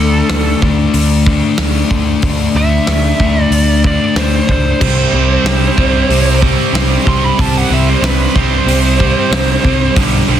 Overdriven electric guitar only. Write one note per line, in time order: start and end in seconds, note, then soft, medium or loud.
0.00 0.29 D3 medium
0.00 0.30 A3 medium
0.00 0.30 D4 loud
0.30 0.62 D3 loud
0.30 0.63 A3 medium
0.30 0.63 D4 loud
0.62 0.93 D3 medium
0.62 0.94 A3 loud
0.62 0.94 D4 loud
0.94 1.26 D3 loud
0.94 1.26 A3 loud
0.94 1.27 D4 loud
1.27 1.58 D3 medium
1.27 1.58 A3 medium
1.27 1.59 D4 medium
1.59 1.90 D3 medium
1.59 1.90 A3 medium
1.59 1.90 D4 loud
1.91 2.22 D3 medium
1.91 2.23 A3 medium
1.91 2.23 D4 medium
2.24 2.54 D3 loud
2.24 2.55 A3 loud
2.24 2.55 D4 loud
2.56 2.86 D3 medium
2.56 2.87 A3 medium
2.56 2.87 D4 medium
2.87 3.20 D3 medium
2.87 3.20 A3 medium
2.87 3.21 D4 loud
3.21 3.51 D3 medium
3.21 3.52 A3 medium
3.21 3.52 D4 loud
3.52 3.83 D3 loud
3.52 3.84 A3 loud
3.52 3.84 D4 loud
3.85 4.15 D3 medium
3.85 4.16 A3 medium
3.85 4.17 D4 medium
4.17 4.48 D3 medium
4.17 4.49 A3 loud
4.17 4.49 D4 loud
4.49 4.79 D3 medium
4.49 4.80 A3 medium
4.49 4.80 D4 medium
4.81 5.14 C3 medium
4.81 5.14 G3 loud
4.81 5.14 C4 loud
5.14 5.45 C3 medium
5.14 5.46 G3 loud
5.14 5.46 C4 loud
5.46 5.78 C3 medium
5.46 5.78 G3 loud
5.46 5.79 C4 loud
5.78 6.09 C3 medium
5.78 6.10 G3 medium
5.78 6.10 C4 medium
6.10 6.41 C3 loud
6.10 6.42 G3 loud
6.10 6.42 C4 loud
6.43 6.73 C3 medium
6.43 6.74 G3 medium
6.43 6.74 C4 medium
6.74 7.05 C3 medium
6.74 7.06 G3 loud
6.74 7.06 C4 loud
7.06 7.37 C3 medium
7.06 7.38 G3 medium
7.06 7.38 C4 medium
7.38 7.70 C3 loud
7.38 7.71 G3 loud
7.38 7.71 C4 loud
7.71 8.02 C3 medium
7.71 8.03 G3 medium
7.71 8.02 C4 medium
8.03 8.34 C3 medium
8.03 8.35 G3 medium
8.03 8.35 C4 loud
8.35 8.66 C3 medium
8.35 8.68 G3 loud
8.35 8.67 C4 medium
8.67 8.98 C3 loud
8.67 9.00 G3 loud
8.67 8.99 C4 loud
9.00 9.31 C3 medium
9.00 9.32 G3 medium
9.00 9.32 C4 loud
9.32 9.63 C3 medium
9.32 9.64 G3 loud
9.32 9.64 C4 loud
9.64 9.95 C3 medium
9.64 9.98 G3 loud
9.64 9.95 C4 medium
9.97 10.28 G2 loud
9.97 10.28 D3 loud
9.97 10.29 G3 loud
10.29 10.40 G2 medium
10.29 10.40 D3 loud
10.29 10.40 G3 loud